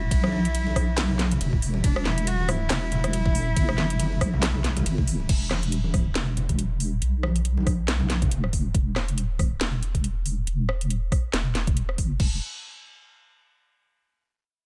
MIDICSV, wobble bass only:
0, 0, Header, 1, 2, 480
1, 0, Start_track
1, 0, Key_signature, 1, "minor"
1, 0, Tempo, 431655
1, 125, Time_signature, 4, 2, 24, 8
1, 16300, End_track
2, 0, Start_track
2, 0, Title_t, "Wobble bass"
2, 0, Program_c, 0, 39
2, 125, Note_on_c, 0, 35, 99
2, 1548, Note_off_c, 0, 35, 0
2, 1565, Note_on_c, 0, 28, 99
2, 2028, Note_off_c, 0, 28, 0
2, 2044, Note_on_c, 0, 28, 100
2, 2988, Note_off_c, 0, 28, 0
2, 3004, Note_on_c, 0, 28, 100
2, 3948, Note_off_c, 0, 28, 0
2, 3964, Note_on_c, 0, 30, 98
2, 4668, Note_off_c, 0, 30, 0
2, 4684, Note_on_c, 0, 35, 97
2, 5388, Note_off_c, 0, 35, 0
2, 5403, Note_on_c, 0, 31, 99
2, 5867, Note_off_c, 0, 31, 0
2, 5885, Note_on_c, 0, 28, 99
2, 6828, Note_off_c, 0, 28, 0
2, 6845, Note_on_c, 0, 28, 97
2, 7788, Note_off_c, 0, 28, 0
2, 7805, Note_on_c, 0, 35, 98
2, 9228, Note_off_c, 0, 35, 0
2, 9244, Note_on_c, 0, 28, 98
2, 9708, Note_off_c, 0, 28, 0
2, 9725, Note_on_c, 0, 28, 95
2, 10668, Note_off_c, 0, 28, 0
2, 10685, Note_on_c, 0, 28, 99
2, 11628, Note_off_c, 0, 28, 0
2, 11645, Note_on_c, 0, 28, 96
2, 12348, Note_off_c, 0, 28, 0
2, 12604, Note_on_c, 0, 28, 101
2, 13308, Note_off_c, 0, 28, 0
2, 13324, Note_on_c, 0, 31, 93
2, 13548, Note_off_c, 0, 31, 0
2, 13565, Note_on_c, 0, 28, 94
2, 13788, Note_off_c, 0, 28, 0
2, 16300, End_track
0, 0, End_of_file